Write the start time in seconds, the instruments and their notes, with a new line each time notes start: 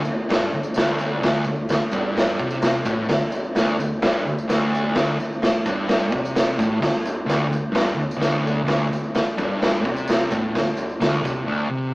0.05 distorted electric guitar D2, floor tom, tambourine
0.29 distorted electric guitar G2, kick, snare, floor tom, tambourine
0.39 tambourine
0.52 distorted electric guitar D2, floor tom, tambourine
0.63 tambourine
0.74 distorted electric guitar D2, snare, floor tom, tambourine
0.99 floor tom, tambourine
1.21 distorted electric guitar D2, kick, snare, floor tom
1.45 distorted electric guitar D2, floor tom, tambourine
1.56 tambourine
1.69 distorted electric guitar D2, snare, floor tom, tambourine
1.91 distorted electric guitar G2, kick, floor tom, tambourine
2.16 snare, floor tom, tambourine
2.27 tambourine
2.39 distorted electric guitar C3, kick, floor tom, tambourine
2.51 tambourine
2.62 snare, floor tom, tambourine
2.74 tambourine
2.85 distorted electric guitar A2, kick, floor tom, tambourine
3.08 distorted electric guitar D2, kick, snare, floor tom, tambourine
3.20 tambourine
3.32 floor tom, tambourine
3.44 tambourine
3.55 distorted electric guitar D2, snare, floor tom, tambourine
3.69 tambourine
3.79 distorted electric guitar D2, floor tom, tambourine
3.93 tambourine
4.02 distorted electric guitar G2, kick, snare, floor tom, tambourine
4.17 tambourine
4.25 distorted electric guitar D2, floor tom, tambourine
4.38 tambourine
4.48 distorted electric guitar D2, snare, floor tom, tambourine
4.73 floor tom, tambourine
4.95 distorted electric guitar D2, kick, snare, floor tom
5.19 distorted electric guitar D2, floor tom, tambourine
5.32 tambourine
5.42 distorted electric guitar D2, snare, floor tom, tambourine
5.66 distorted electric guitar G2, kick, floor tom, tambourine
5.88 snare, floor tom, tambourine
6.02 tambourine
6.12 distorted electric guitar C3, kick, floor tom, tambourine
6.25 tambourine
6.36 snare, floor tom, tambourine
6.58 distorted electric guitar A2, kick, floor tom, tambourine
6.81 distorted electric guitar D2, kick, snare, floor tom
7.05 floor tom, tambourine
7.26 distorted electric guitar D2, snare, floor tom, tambourine
7.49 distorted electric guitar D2, floor tom
7.53 tambourine
7.72 distorted electric guitar G2, kick, snare, floor tom
7.76 tambourine
7.88 tambourine
7.95 distorted electric guitar D2, floor tom
8.00 tambourine
8.11 tambourine
8.17 distorted electric guitar D2, floor tom
8.21 snare, tambourine
8.44 floor tom, tambourine
8.63 distorted electric guitar D2
8.68 kick, snare, floor tom
8.89 distorted electric guitar D2, floor tom, tambourine
9.04 tambourine
9.15 distorted electric guitar D2, snare, floor tom, tambourine
9.37 distorted electric guitar G2, kick, floor tom, tambourine
9.61 snare, floor tom, tambourine
9.74 tambourine
9.85 distorted electric guitar C3, kick, floor tom, tambourine
9.96 tambourine
10.08 snare, floor tom, tambourine
10.31 distorted electric guitar A2, kick, floor tom, tambourine
10.55 distorted electric guitar D2, kick, snare, floor tom, tambourine
10.66 tambourine
10.77 floor tom, tambourine
10.89 tambourine
11.00 distorted electric guitar D2, snare, floor tom, tambourine
11.15 tambourine
11.22 distorted electric guitar C3, kick, floor tom, tambourine
11.46 distorted electric guitar D2
11.70 distorted electric guitar C3